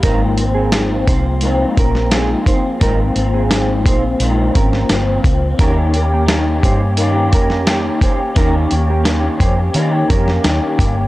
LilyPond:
<<
  \new Staff \with { instrumentName = "Clean electric guitar" } { \time 4/4 \key aes \major \tempo 4 = 86 <ees' bes'>16 r8 <c' aes'>8 r16 <ees' c''>16 r8. <des' bes'>8 <c' aes'>16 r16 <ees' c''>16 r16 | <ees' bes'>16 r8 <c' aes'>8 r16 <ees' c''>16 r8. <des' bes'>8 r4 | <des' bes'>16 r8 <bes g'>8 r16 <ees' c''>16 r8. <des' bes'>8 <bes g'>16 r16 <ees' c''>16 r16 | <des' bes'>16 r8 <bes g'>8 r16 <ees' c''>16 r8. <des' bes'>8 r4 | }
  \new Staff \with { instrumentName = "Clean electric guitar" } { \time 4/4 \key aes \major <aes, f bes c'>8 <f bes c'>8 <aes, f bes c'>8 <f bes c'>8 <aes, f bes c'>8 <f bes c'>8 <aes, f bes c'>8 <f bes c'>8 | <aes, f bes c'>8 <f bes c'>8 <aes, f bes c'>8 <f bes c'>8 <aes, f bes c'>8 <f bes c'>8 <f bes c'>8 <f bes c'>8 | <ees bes des' g'>8 <bes des' g'>8 <ees bes des' g'>8 <bes des' g'>8 <ees bes des' g'>8 <bes des' g'>8 <ees bes des' g'>8 <bes des' g'>8 | <ees bes des' g'>8 <bes des' g'>8 <ees bes des' g'>8 <bes des' g'>8 <ees bes des' g'>8 <bes des' g'>8 <ees bes des' g'>8 <bes des' g'>8 | }
  \new Staff \with { instrumentName = "Fingered electric bass" } { \clef bass \time 4/4 \key aes \major aes,,4. c,4 bes,,4 r8 | aes,,8 aes,,4 bes,,8 bes,,8 aes,,8 g,,8 des,8 | ees,4. g,4 f,4 r8 | ees,8 ees,4 f,8 ees8 f,8 ees,16 r16 g,,8 | }
  \new DrumStaff \with { instrumentName = "Drums" } \drummode { \time 4/4 <hh bd>8 hh8 <hh sn>8 <hh bd>8 hh8 <hh bd>16 sn16 <hh sn>8 <hh bd>8 | <hh bd>8 hh8 <hh sn>8 <hh bd>8 hh8 <hh bd>16 sn16 <hh sn>8 <hh bd>8 | <hh bd>8 hh8 <hh sn>8 <hh bd>8 hh8 <hh bd>16 sn16 <hh sn>8 <hh bd>8 | <hh bd>8 hh8 <hh sn>8 <hh bd>8 hh8 <hh bd>16 sn16 <hh sn>8 <hh bd>8 | }
>>